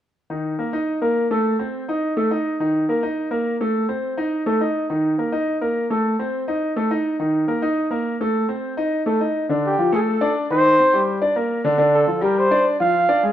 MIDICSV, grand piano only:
0, 0, Header, 1, 2, 480
1, 0, Start_track
1, 0, Tempo, 287219
1, 510, Time_signature, 4, 2, 24, 8
1, 22269, End_track
2, 0, Start_track
2, 0, Title_t, "Grand piano"
2, 0, Program_c, 0, 0
2, 500, Note_on_c, 0, 51, 62
2, 502, Note_on_c, 0, 63, 64
2, 897, Note_off_c, 0, 51, 0
2, 898, Note_off_c, 0, 63, 0
2, 981, Note_on_c, 0, 58, 57
2, 981, Note_on_c, 0, 70, 55
2, 1181, Note_off_c, 0, 58, 0
2, 1181, Note_off_c, 0, 70, 0
2, 1220, Note_on_c, 0, 63, 72
2, 1220, Note_on_c, 0, 75, 68
2, 1617, Note_off_c, 0, 63, 0
2, 1617, Note_off_c, 0, 75, 0
2, 1697, Note_on_c, 0, 58, 64
2, 1702, Note_on_c, 0, 70, 67
2, 2094, Note_off_c, 0, 58, 0
2, 2098, Note_off_c, 0, 70, 0
2, 2185, Note_on_c, 0, 57, 68
2, 2189, Note_on_c, 0, 69, 72
2, 2579, Note_off_c, 0, 57, 0
2, 2581, Note_off_c, 0, 69, 0
2, 2661, Note_on_c, 0, 60, 63
2, 2661, Note_on_c, 0, 72, 63
2, 3056, Note_off_c, 0, 60, 0
2, 3057, Note_off_c, 0, 72, 0
2, 3150, Note_on_c, 0, 63, 68
2, 3158, Note_on_c, 0, 75, 65
2, 3541, Note_off_c, 0, 63, 0
2, 3546, Note_off_c, 0, 75, 0
2, 3621, Note_on_c, 0, 57, 69
2, 3624, Note_on_c, 0, 69, 66
2, 3820, Note_off_c, 0, 57, 0
2, 3822, Note_off_c, 0, 69, 0
2, 3859, Note_on_c, 0, 63, 68
2, 3865, Note_on_c, 0, 75, 67
2, 4255, Note_off_c, 0, 63, 0
2, 4258, Note_off_c, 0, 75, 0
2, 4344, Note_on_c, 0, 51, 62
2, 4348, Note_on_c, 0, 63, 71
2, 4738, Note_off_c, 0, 51, 0
2, 4740, Note_off_c, 0, 63, 0
2, 4827, Note_on_c, 0, 58, 63
2, 4836, Note_on_c, 0, 70, 59
2, 5022, Note_off_c, 0, 58, 0
2, 5028, Note_off_c, 0, 70, 0
2, 5061, Note_on_c, 0, 63, 68
2, 5062, Note_on_c, 0, 75, 67
2, 5456, Note_off_c, 0, 63, 0
2, 5456, Note_off_c, 0, 75, 0
2, 5529, Note_on_c, 0, 58, 67
2, 5533, Note_on_c, 0, 70, 66
2, 5928, Note_off_c, 0, 58, 0
2, 5931, Note_off_c, 0, 70, 0
2, 6027, Note_on_c, 0, 57, 66
2, 6032, Note_on_c, 0, 69, 73
2, 6419, Note_off_c, 0, 57, 0
2, 6422, Note_off_c, 0, 69, 0
2, 6494, Note_on_c, 0, 60, 58
2, 6499, Note_on_c, 0, 72, 67
2, 6892, Note_off_c, 0, 60, 0
2, 6894, Note_off_c, 0, 72, 0
2, 6976, Note_on_c, 0, 63, 76
2, 6985, Note_on_c, 0, 75, 70
2, 7373, Note_off_c, 0, 63, 0
2, 7378, Note_off_c, 0, 75, 0
2, 7457, Note_on_c, 0, 57, 73
2, 7465, Note_on_c, 0, 69, 67
2, 7656, Note_off_c, 0, 57, 0
2, 7661, Note_off_c, 0, 69, 0
2, 7698, Note_on_c, 0, 63, 63
2, 7710, Note_on_c, 0, 75, 65
2, 8094, Note_off_c, 0, 63, 0
2, 8101, Note_off_c, 0, 75, 0
2, 8184, Note_on_c, 0, 63, 65
2, 8185, Note_on_c, 0, 51, 65
2, 8578, Note_off_c, 0, 51, 0
2, 8578, Note_off_c, 0, 63, 0
2, 8661, Note_on_c, 0, 58, 58
2, 8673, Note_on_c, 0, 70, 60
2, 8859, Note_off_c, 0, 58, 0
2, 8866, Note_off_c, 0, 70, 0
2, 8897, Note_on_c, 0, 75, 68
2, 8898, Note_on_c, 0, 63, 68
2, 9294, Note_off_c, 0, 63, 0
2, 9294, Note_off_c, 0, 75, 0
2, 9380, Note_on_c, 0, 58, 61
2, 9385, Note_on_c, 0, 70, 66
2, 9775, Note_off_c, 0, 58, 0
2, 9778, Note_off_c, 0, 70, 0
2, 9865, Note_on_c, 0, 57, 67
2, 9874, Note_on_c, 0, 69, 70
2, 10258, Note_off_c, 0, 57, 0
2, 10264, Note_off_c, 0, 69, 0
2, 10349, Note_on_c, 0, 60, 66
2, 10357, Note_on_c, 0, 72, 62
2, 10740, Note_off_c, 0, 60, 0
2, 10746, Note_off_c, 0, 72, 0
2, 10828, Note_on_c, 0, 75, 66
2, 10829, Note_on_c, 0, 63, 65
2, 11220, Note_off_c, 0, 75, 0
2, 11221, Note_off_c, 0, 63, 0
2, 11302, Note_on_c, 0, 57, 71
2, 11308, Note_on_c, 0, 69, 72
2, 11500, Note_off_c, 0, 57, 0
2, 11503, Note_off_c, 0, 69, 0
2, 11543, Note_on_c, 0, 63, 75
2, 11546, Note_on_c, 0, 75, 70
2, 11937, Note_off_c, 0, 63, 0
2, 11939, Note_off_c, 0, 75, 0
2, 12024, Note_on_c, 0, 51, 66
2, 12029, Note_on_c, 0, 63, 67
2, 12419, Note_off_c, 0, 51, 0
2, 12421, Note_off_c, 0, 63, 0
2, 12494, Note_on_c, 0, 58, 57
2, 12501, Note_on_c, 0, 70, 66
2, 12695, Note_off_c, 0, 58, 0
2, 12700, Note_off_c, 0, 70, 0
2, 12738, Note_on_c, 0, 63, 78
2, 12745, Note_on_c, 0, 75, 65
2, 13135, Note_off_c, 0, 63, 0
2, 13139, Note_off_c, 0, 75, 0
2, 13212, Note_on_c, 0, 58, 65
2, 13220, Note_on_c, 0, 70, 65
2, 13611, Note_off_c, 0, 58, 0
2, 13616, Note_off_c, 0, 70, 0
2, 13714, Note_on_c, 0, 57, 64
2, 13719, Note_on_c, 0, 69, 76
2, 14104, Note_off_c, 0, 57, 0
2, 14107, Note_off_c, 0, 69, 0
2, 14181, Note_on_c, 0, 60, 63
2, 14185, Note_on_c, 0, 72, 62
2, 14577, Note_off_c, 0, 60, 0
2, 14579, Note_off_c, 0, 72, 0
2, 14661, Note_on_c, 0, 63, 68
2, 14666, Note_on_c, 0, 75, 73
2, 15057, Note_off_c, 0, 63, 0
2, 15060, Note_off_c, 0, 75, 0
2, 15141, Note_on_c, 0, 57, 68
2, 15152, Note_on_c, 0, 69, 64
2, 15340, Note_off_c, 0, 57, 0
2, 15347, Note_off_c, 0, 69, 0
2, 15383, Note_on_c, 0, 63, 62
2, 15390, Note_on_c, 0, 75, 65
2, 15778, Note_off_c, 0, 63, 0
2, 15782, Note_off_c, 0, 75, 0
2, 15866, Note_on_c, 0, 50, 66
2, 15875, Note_on_c, 0, 62, 68
2, 16260, Note_off_c, 0, 50, 0
2, 16265, Note_off_c, 0, 62, 0
2, 16351, Note_on_c, 0, 53, 68
2, 16359, Note_on_c, 0, 65, 56
2, 16546, Note_off_c, 0, 53, 0
2, 16551, Note_off_c, 0, 65, 0
2, 16585, Note_on_c, 0, 57, 72
2, 16586, Note_on_c, 0, 69, 80
2, 16979, Note_off_c, 0, 57, 0
2, 16980, Note_off_c, 0, 69, 0
2, 17062, Note_on_c, 0, 62, 72
2, 17066, Note_on_c, 0, 74, 70
2, 17458, Note_off_c, 0, 62, 0
2, 17460, Note_off_c, 0, 74, 0
2, 17553, Note_on_c, 0, 51, 70
2, 17562, Note_on_c, 0, 63, 68
2, 17944, Note_off_c, 0, 51, 0
2, 17949, Note_off_c, 0, 63, 0
2, 18031, Note_on_c, 0, 60, 67
2, 18036, Note_on_c, 0, 72, 71
2, 18226, Note_off_c, 0, 60, 0
2, 18229, Note_off_c, 0, 72, 0
2, 18269, Note_on_c, 0, 55, 65
2, 18269, Note_on_c, 0, 67, 70
2, 18661, Note_off_c, 0, 55, 0
2, 18661, Note_off_c, 0, 67, 0
2, 18741, Note_on_c, 0, 62, 56
2, 18746, Note_on_c, 0, 74, 67
2, 18940, Note_off_c, 0, 62, 0
2, 18943, Note_off_c, 0, 74, 0
2, 18982, Note_on_c, 0, 58, 68
2, 18986, Note_on_c, 0, 70, 67
2, 19377, Note_off_c, 0, 58, 0
2, 19380, Note_off_c, 0, 70, 0
2, 19459, Note_on_c, 0, 50, 81
2, 19465, Note_on_c, 0, 62, 82
2, 19659, Note_off_c, 0, 50, 0
2, 19662, Note_off_c, 0, 62, 0
2, 19686, Note_on_c, 0, 50, 76
2, 19698, Note_on_c, 0, 62, 68
2, 20088, Note_off_c, 0, 50, 0
2, 20095, Note_off_c, 0, 62, 0
2, 20174, Note_on_c, 0, 53, 63
2, 20181, Note_on_c, 0, 65, 61
2, 20376, Note_off_c, 0, 53, 0
2, 20380, Note_off_c, 0, 65, 0
2, 20407, Note_on_c, 0, 55, 76
2, 20414, Note_on_c, 0, 67, 74
2, 20809, Note_off_c, 0, 55, 0
2, 20812, Note_off_c, 0, 67, 0
2, 20904, Note_on_c, 0, 62, 67
2, 20913, Note_on_c, 0, 74, 68
2, 21298, Note_off_c, 0, 62, 0
2, 21303, Note_off_c, 0, 74, 0
2, 21392, Note_on_c, 0, 65, 69
2, 21394, Note_on_c, 0, 53, 68
2, 21783, Note_off_c, 0, 65, 0
2, 21784, Note_off_c, 0, 53, 0
2, 21870, Note_on_c, 0, 62, 67
2, 21873, Note_on_c, 0, 74, 74
2, 22065, Note_off_c, 0, 62, 0
2, 22067, Note_off_c, 0, 74, 0
2, 22112, Note_on_c, 0, 56, 57
2, 22119, Note_on_c, 0, 68, 63
2, 22269, Note_off_c, 0, 56, 0
2, 22269, Note_off_c, 0, 68, 0
2, 22269, End_track
0, 0, End_of_file